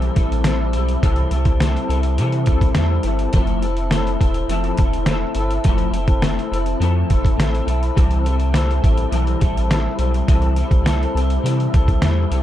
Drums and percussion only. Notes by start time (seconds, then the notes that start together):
0.02 closed hi-hat
0.16 kick, closed hi-hat
0.32 closed hi-hat
0.44 snare, closed hi-hat
0.73 closed hi-hat
0.88 closed hi-hat
1.03 kick, closed hi-hat
1.16 closed hi-hat
1.31 closed hi-hat
1.45 kick, closed hi-hat
1.60 snare, closed hi-hat
1.77 closed hi-hat
1.90 closed hi-hat
2.03 closed hi-hat
2.18 closed hi-hat
2.32 closed hi-hat
2.46 kick, closed hi-hat
2.61 kick, closed hi-hat
2.75 snare, closed hi-hat
3.03 closed hi-hat
3.19 closed hi-hat
3.33 kick, closed hi-hat
3.47 closed hi-hat
3.62 closed hi-hat
3.77 closed hi-hat
3.91 snare, closed hi-hat
4.07 closed hi-hat
4.21 kick, closed hi-hat
4.34 closed hi-hat
4.49 closed hi-hat
4.64 closed hi-hat
4.77 kick, closed hi-hat
4.93 closed hi-hat
5.06 snare, closed hi-hat
5.35 closed hi-hat
5.51 closed hi-hat
5.64 kick, closed hi-hat
5.78 closed hi-hat
5.94 closed hi-hat
6.08 kick, closed hi-hat
6.22 snare, closed hi-hat
6.39 closed hi-hat
6.53 closed hi-hat
6.66 closed hi-hat
6.82 closed hi-hat
7.10 kick, closed hi-hat
7.25 kick, closed hi-hat
7.40 snare, closed hi-hat
7.55 closed hi-hat
7.68 closed hi-hat
7.83 closed hi-hat
7.97 kick, closed hi-hat
8.11 closed hi-hat
8.26 closed hi-hat
8.40 closed hi-hat
8.54 snare, closed hi-hat
8.71 closed hi-hat
8.84 kick, closed hi-hat
8.97 closed hi-hat
9.12 closed hi-hat
9.27 closed hi-hat
9.41 kick, closed hi-hat
9.57 closed hi-hat
9.71 snare, closed hi-hat
9.99 closed hi-hat
10.14 closed hi-hat
10.28 kick, closed hi-hat
10.42 closed hi-hat
10.56 closed hi-hat
10.71 kick, closed hi-hat
10.86 snare, closed hi-hat
11.03 closed hi-hat
11.17 closed hi-hat
11.30 closed hi-hat
11.46 closed hi-hat
11.60 closed hi-hat
11.74 kick, closed hi-hat
11.88 kick, closed hi-hat
12.02 snare, closed hi-hat
12.32 closed hi-hat